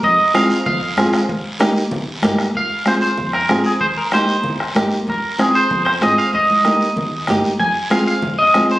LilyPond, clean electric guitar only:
\new Staff \with { instrumentName = "Clean electric guitar" } { \time 4/4 \key f \minor \tempo 4 = 190 ees''4 f''4 f''2~ | f''4 r2. | f''4 c''8 c''4 bes'4 aes'8 | c''8 bes'8 c''2 r4 |
bes'4 aes'8 c''4 c''8 ees''8 f''8 | ees''2.~ ees''8 r8 | aes''4 f''8 f''4 ees''4 c''8 | }